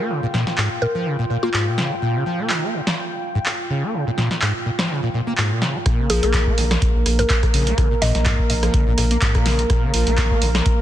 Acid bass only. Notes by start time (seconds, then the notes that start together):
0.00 A#3
0.10 C#3
0.23 A#2
0.34 A#2
0.58 G#2
0.82 A#2
0.95 F3
1.06 C#3
1.19 A#2
1.30 A#2
1.43 A#3
1.54 G#2
1.67 A#2
1.78 C#3
1.91 A#3
2.02 A#2
2.15 C#3
2.26 F3
2.39 A#3
2.50 D#3
2.63 A#3
2.74 C#3
3.35 G#2
3.70 C#3
3.83 A#3
3.94 C#3
4.07 A#2
4.18 A#2
4.42 G#2
4.66 A#2
4.79 F3
4.90 C#3
5.03 A#2
5.14 A#2
5.27 A#3
5.38 G#2
5.51 A#2
5.62 C#3
5.75 A#3
5.86 A#2
5.99 C#3
6.10 F3
6.23 A#3
6.34 D#3
6.47 A#3
6.58 C#3
7.19 G#2
7.54 C#3
7.67 A#3
7.78 C#3
7.91 A#2
8.02 A#2
8.26 G#2
8.50 A#2
8.63 F3
8.74 C#3
8.87 A#2
8.98 A#2
9.11 A#3
9.22 G#2
9.35 A#2
9.46 C#3
9.59 A#3
9.70 A#2
9.83 C#3
9.94 F3
10.07 A#3
10.18 D#3
10.31 A#3
10.42 C#3